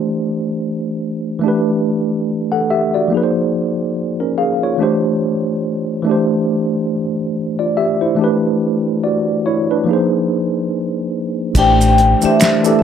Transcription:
Already playing: tine electric piano E3 A3 D4 G4 C5
1.39 tine electric piano E3 A3
1.44 tine electric piano D4 G4
1.48 tine electric piano B4
2.52 tine electric piano A4 F#5
2.70 tine electric piano G4 E5
2.94 tine electric piano F#4 D5
3.08 tine electric piano F3 A#3
3.12 tine electric piano D#4 G#4
3.17 tine electric piano B4
3.23 tine electric piano C5
4.20 tine electric piano C#4 A#4
4.38 tine electric piano G#4 F5
4.63 tine electric piano F4 C#5
4.78 tine electric piano E3 A3 D4 G4
4.83 tine electric piano C5
6.02 tine electric piano E3 A3
6.07 tine electric piano D4 G4
6.11 tine electric piano C5
7.59 tine electric piano F4 D5
7.77 tine electric piano G4 E5
8.01 tine electric piano E4 C5
8.15 tine electric piano E3 A3
8.19 tine electric piano D4 G4
8.24 tine electric piano B4
9.04 tine electric piano F#4 D5
9.46 tine electric piano E4 C#5
9.71 tine electric piano D4 B4
9.84 tine electric piano F3 A#3
9.89 tine electric piano D#4 G#4
9.93 tine electric piano C5
11.55 fingered electric bass A1, tine electric piano E3 A3 D4 G4, vibraphone G5, kick, crash, maracas
11.59 tine electric piano C5
11.81 maracas
11.98 closed hi-hat
12.21 tine electric piano E3 A3 D4 G4, vibraphone E5, muted fingered electric bass stroke, maracas
12.26 tine electric piano C5
12.40 finger snap, snare, clap, closed hi-hat, maracas
12.63 tine electric piano E3 A3 D4 G4, maracas
12.68 tine electric piano A4
12.79 vibraphone E5

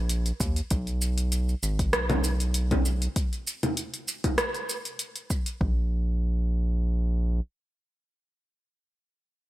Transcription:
Already playing: analog synth bass A#1
0.09 closed hi-hat, shaker
0.26 closed hi-hat, shaker
0.40 analog synth bass D#2, kick, shaker
0.56 closed hi-hat, shaker
0.70 analog synth bass B1, kick, closed hi-hat, shaker
0.87 closed hi-hat, shaker
1.02 shaker
1.18 closed hi-hat, shaker
1.32 closed hi-hat, shaker
1.49 shaker
1.63 analog synth bass G#1, shaker
1.79 kick, closed hi-hat, shaker
1.93 analog synth bass B1, cross-stick, closed hi-hat, shaker
2.10 closed hi-hat, low conga, shaker
2.24 shaker
2.40 closed hi-hat, shaker
2.54 closed hi-hat, shaker
2.71 kick, closed hi-hat, low conga, shaker
2.85 shaker
3.02 closed hi-hat, shaker
3.16 kick, closed hi-hat, shaker
3.33 closed hi-hat, shaker
3.47 shaker
3.63 closed hi-hat, low conga, shaker
3.77 closed hi-hat, shaker
3.94 closed hi-hat, shaker
4.08 shaker
4.24 kick, closed hi-hat, low conga, shaker
4.38 cross-stick, closed hi-hat, shaker
4.54 closed hi-hat, shaker
4.69 shaker
4.85 closed hi-hat, shaker
4.99 closed hi-hat, shaker
5.16 closed hi-hat, shaker
5.30 kick, shaker
5.46 closed hi-hat, shaker
5.61 analog synth bass A#1, kick

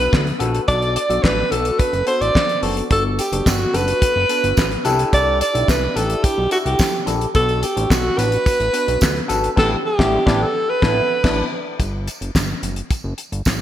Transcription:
Already playing: tine electric piano B3 D4 F#4 A4, alto saxophone B4
0.13 analog synth bass D2, kick, snare, clap
0.27 closed hi-hat
0.39 analog synth bass A#1, tine electric piano B3 D4 F#4 A4, closed hi-hat
0.55 closed hi-hat
0.68 analog synth bass B1, tine electric piano B3 D4 F#4 A4, alto saxophone D5, kick, closed hi-hat
0.82 closed hi-hat
0.96 alto saxophone D5, closed hi-hat
1.09 analog synth bass B1, tine electric piano B3 D4 F#4 A4, closed hi-hat
1.23 analog synth bass A1, alto saxophone B4, kick, snare, clap
1.51 analog synth bass B1, tine electric piano B3 D4 F#4 A4, alto saxophone A4, closed hi-hat
1.65 closed hi-hat
1.79 alto saxophone B4, kick, closed hi-hat
1.93 analog synth bass F#1, closed hi-hat
2.06 tine electric piano B3 D4 F#4 A4, alto saxophone C5, closed hi-hat
2.21 analog synth bass A1, alto saxophone D5, closed hi-hat
2.35 kick, snare, clap
2.49 closed hi-hat
2.62 analog synth bass F#1, tine electric piano B3 D4 F#4 A4, open hi-hat
2.77 closed hi-hat
2.90 analog synth bass G1, tine electric piano B3 D4 F#4 A4, alto saxophone A4, kick, closed hi-hat
3.19 alto saxophone G4, closed hi-hat, tambourine
3.32 analog synth bass F#1, tine electric piano B3 D4 F#4 A4, closed hi-hat
3.46 analog synth bass G1, alto saxophone F#4, kick, snare, clap, tambourine
3.73 analog synth bass F#1, tine electric piano B3 D4 F#4 A4, alto saxophone B4, closed hi-hat, tambourine
3.88 closed hi-hat
4.02 kick, closed hi-hat, tambourine
4.16 analog synth bass F#1
4.29 tine electric piano B3 D4 F#4 A4, closed hi-hat, tambourine
4.44 analog synth bass G1, closed hi-hat
4.57 analog synth bass A1, kick, snare, clap, tambourine
4.71 closed hi-hat
4.85 analog synth bass C2, tine electric piano D4 E4 G4 A4, closed hi-hat, tambourine
4.99 closed hi-hat
5.13 analog synth bass C2, alto saxophone D5, kick, closed hi-hat, tambourine
5.41 alto saxophone D5, closed hi-hat, tambourine
5.54 analog synth bass B1, tine electric piano D4 E4 G4 A4, closed hi-hat
5.68 analog synth bass C2, alto saxophone B4, kick, snare, clap, tambourine
5.95 analog synth bass A1, tine electric piano D4 D#4 G4 A4, alto saxophone A4, closed hi-hat, tambourine
6.02 tine electric piano E4
6.10 closed hi-hat
6.24 alto saxophone G4, kick, closed hi-hat, tambourine
6.38 analog synth bass B1
6.51 tine electric piano D4 E4 G4 A4, alto saxophone F#4, closed hi-hat, tambourine
6.66 analog synth bass C2, alto saxophone G4, closed hi-hat
6.79 kick, snare, clap, tambourine
7.06 analog synth bass A#1, tine electric piano D4 E4 G4 A4, closed hi-hat, tambourine
7.21 closed hi-hat
7.34 analog synth bass B1, tine electric piano B3 D4 F#4 A4, alto saxophone A4, kick, closed hi-hat, tambourine
7.49 closed hi-hat
7.63 alto saxophone G4, closed hi-hat, tambourine
7.76 analog synth bass A1, tine electric piano B3 D4 F#4 A4, closed hi-hat
7.90 analog synth bass B1, alto saxophone F#4, kick, snare, clap, tambourine
8.18 analog synth bass A1, tine electric piano B3 D4 F#4 B4, alto saxophone B4, closed hi-hat, tambourine
8.32 closed hi-hat
8.46 kick, closed hi-hat, tambourine
8.60 analog synth bass A1, closed hi-hat
8.73 tine electric piano B3 D4 F#4 B4, closed hi-hat, tambourine
8.88 analog synth bass B1, closed hi-hat
9.01 analog synth bass D2, kick, snare, clap, tambourine
9.16 closed hi-hat
9.28 analog synth bass G#1, tine electric piano B3 D4 F#4 A4, closed hi-hat, tambourine
9.44 closed hi-hat
9.56 analog synth bass A1, tine electric piano B3 D4 E4 G4, alto saxophone A4, kick, snare, crash
9.86 alto saxophone G4
9.98 analog synth bass A1, tine electric piano B3 D4 E4 G4, kick, snare
10.26 analog synth bass A1, tine electric piano B3 D4 E4 G4, kick, snare
10.42 alto saxophone A4
10.70 alto saxophone B4
10.82 analog synth bass A1, tine electric piano B3 D4 E4, kick, snare
11.23 analog synth bass A1, tine electric piano B3 D4 E4, kick, snare, crash
11.80 analog synth bass G1, kick, closed hi-hat, tambourine
12.08 closed hi-hat, tambourine
12.21 analog synth bass F#1, closed hi-hat
12.35 analog synth bass G1, kick, snare, clap, tambourine
12.63 analog synth bass F#1, closed hi-hat, tambourine
12.76 closed hi-hat
12.90 kick, closed hi-hat, tambourine
13.04 analog synth bass F#1
13.18 closed hi-hat, tambourine
13.32 analog synth bass G1, closed hi-hat
13.45 analog synth bass A1, kick, snare, clap, tambourine

